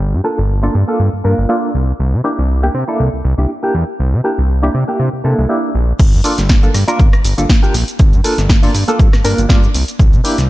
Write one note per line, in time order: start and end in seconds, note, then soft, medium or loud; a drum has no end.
0.00 0.15 G1 medium
0.13 0.21 G2 medium
0.24 0.37 A#3 medium
0.24 0.37 D4 medium
0.24 0.38 F4 medium
0.24 0.38 A4 medium
0.38 0.69 G1 medium
0.63 0.74 A#3 medium
0.63 0.74 D4 medium
0.63 0.74 F4 medium
0.63 0.74 A4 loud
0.75 0.84 G2 medium
0.88 1.07 A#3 medium
0.88 1.07 D4 medium
0.88 1.07 F4 medium
0.88 1.07 A4 medium
1.00 1.09 G2 medium
1.13 1.22 G2 soft
1.24 1.34 G2 medium
1.24 1.47 A#3 medium
1.24 1.47 D4 medium
1.24 1.47 F4 medium
1.24 1.47 A#4 medium
1.38 1.46 G1 medium
1.49 1.69 A#3 medium
1.49 1.69 D4 medium
1.49 1.69 F4 medium
1.49 1.69 A4 medium
1.74 1.93 C2 medium
2.00 2.15 C2 medium
2.13 2.21 C3 medium
2.24 2.37 A#3 medium
2.24 2.37 D4 medium
2.24 2.38 E4 medium
2.24 2.38 G4 loud
2.39 2.69 C2 medium
2.63 2.74 A#3 medium
2.63 2.74 D4 medium
2.63 2.74 E4 medium
2.63 2.74 G4 medium
2.74 2.84 C3 medium
2.88 3.06 A#3 medium
2.88 3.07 D4 medium
2.88 3.07 E4 medium
2.88 3.07 A4 loud
3.00 3.09 C2 medium
3.13 3.22 C2 soft
3.25 3.34 C2 medium
3.38 3.46 C2 medium
3.38 3.49 A#3 medium
3.38 3.49 D4 medium
3.38 3.49 E4 medium
3.38 3.49 G4 medium
3.63 3.74 A#3 medium
3.63 3.74 D4 medium
3.63 3.74 E4 medium
3.63 3.74 G4 loud
3.74 3.84 E2 medium
4.00 4.15 C2 medium
4.13 4.21 C3 medium
4.24 4.37 A#3 medium
4.24 4.37 D4 medium
4.24 4.38 E4 medium
4.24 4.38 G4 medium
4.38 4.69 C2 medium
4.63 4.74 A#3 medium
4.63 4.74 D4 medium
4.63 4.74 E4 medium
4.63 4.74 G4 loud
4.74 4.84 C3 medium
4.88 5.06 A#3 medium
4.88 5.07 D4 medium
4.88 5.07 E4 medium
4.88 5.07 G4 medium
5.00 5.09 C3 medium
5.13 5.22 C3 soft
5.24 5.34 C3 medium
5.24 5.47 A#3 medium
5.24 5.47 D4 medium
5.24 5.47 E4 medium
5.24 5.47 A4 loud
5.39 5.46 C2 medium
5.49 5.69 A#3 medium
5.49 5.69 D4 medium
5.49 5.69 E4 medium
5.49 5.69 G4 medium
5.75 5.93 A#1 medium
5.99 6.15 G1 loud
5.99 kick loud
5.99 closed hi-hat medium
5.99 crash loud
5.99 shaker soft
6.13 6.21 G2 medium
6.13 closed hi-hat soft
6.13 shaker soft
6.24 6.37 A#3 medium
6.24 6.37 D4 medium
6.24 6.38 F4 medium
6.24 6.38 A4 loud
6.24 open hi-hat loud
6.24 shaker medium
6.38 6.69 G1 medium
6.38 snare soft
6.38 closed hi-hat medium
6.38 shaker soft
6.49 kick loud
6.49 snare loud
6.49 closed hi-hat medium
6.49 shaker soft
6.63 6.74 A#3 medium
6.63 6.74 D4 medium
6.63 6.74 F4 medium
6.63 6.74 A4 loud
6.63 closed hi-hat soft
6.63 shaker soft
6.74 6.84 G2 medium
6.74 cross-stick medium
6.74 open hi-hat loud
6.74 shaker medium
6.88 7.06 A#3 loud
6.88 7.07 D4 medium
6.88 7.07 F4 medium
6.88 7.07 A#4 loud
6.88 closed hi-hat medium
6.88 shaker soft
6.99 7.09 G1 medium
6.99 kick loud
6.99 closed hi-hat medium
6.99 shaker soft
7.13 7.22 G1 soft
7.13 cross-stick medium
7.13 closed hi-hat soft
7.13 shaker soft
7.24 7.34 G1 loud
7.24 open hi-hat loud
7.24 shaker medium
7.38 7.46 G1 medium
7.38 7.49 A#3 medium
7.38 7.49 D4 medium
7.38 7.49 F4 medium
7.38 7.49 A4 medium
7.38 closed hi-hat medium
7.38 shaker soft
7.50 kick loud
7.50 snare loud
7.50 closed hi-hat medium
7.50 shaker soft
7.62 7.74 A#3 medium
7.62 7.74 D4 medium
7.62 7.74 F4 medium
7.62 7.74 G4 loud
7.62 closed hi-hat soft
7.62 shaker soft
7.74 7.84 A#1 loud
7.74 open hi-hat loud
7.74 shaker medium
7.88 closed hi-hat medium
7.88 shaker soft
7.99 8.14 G1 loud
7.99 kick loud
7.99 closed hi-hat medium
7.99 shaker soft
8.13 8.21 G2 loud
8.13 closed hi-hat soft
8.13 shaker soft
8.24 8.37 A#3 medium
8.24 8.37 D4 medium
8.24 8.38 F4 medium
8.24 8.38 A4 loud
8.24 open hi-hat loud
8.24 shaker medium
8.38 8.69 G1 medium
8.38 snare soft
8.38 closed hi-hat medium
8.38 shaker soft
8.49 kick loud
8.49 snare loud
8.49 closed hi-hat medium
8.49 shaker soft
8.63 8.74 A#3 loud
8.63 8.74 D4 medium
8.63 8.74 F4 medium
8.63 8.74 A4 loud
8.63 open hi-hat medium
8.63 shaker soft
8.74 8.84 G2 medium
8.74 open hi-hat loud
8.74 shaker medium
8.88 9.07 A#3 medium
8.88 9.07 D4 medium
8.88 9.07 F4 medium
8.88 9.07 A4 loud
8.88 closed hi-hat medium
8.88 shaker soft
8.99 9.09 G2 medium
8.99 kick loud
8.99 closed hi-hat medium
8.99 shaker soft
9.13 9.22 G2 soft
9.13 cross-stick medium
9.13 snare soft
9.13 closed hi-hat soft
9.13 shaker soft
9.24 9.34 G2 medium
9.24 9.47 A#3 medium
9.24 9.47 D4 medium
9.24 9.47 F4 medium
9.24 9.47 A#4 loud
9.24 open hi-hat loud
9.24 shaker medium
9.38 9.46 G1 medium
9.38 closed hi-hat medium
9.38 shaker soft
9.49 9.68 G2 medium
9.49 9.69 A#3 medium
9.49 9.69 D4 medium
9.49 9.69 F4 medium
9.49 9.69 A4 loud
9.49 kick loud
9.49 snare loud
9.49 closed hi-hat medium
9.49 shaker soft
9.63 closed hi-hat soft
9.63 shaker soft
9.74 9.84 C2 medium
9.74 open hi-hat loud
9.74 shaker medium
9.88 closed hi-hat medium
9.88 shaker soft
9.99 10.15 C2 loud
9.99 kick loud
9.99 closed hi-hat medium
9.99 shaker soft
10.13 10.21 C3 medium
10.13 closed hi-hat soft
10.13 shaker soft
10.24 10.37 A#3 loud
10.24 10.37 D4 medium
10.24 10.38 E4 medium
10.24 10.38 G4 loud
10.24 open hi-hat loud
10.24 shaker medium
10.38 10.50 C2 medium
10.38 snare soft
10.38 closed hi-hat medium
10.38 shaker soft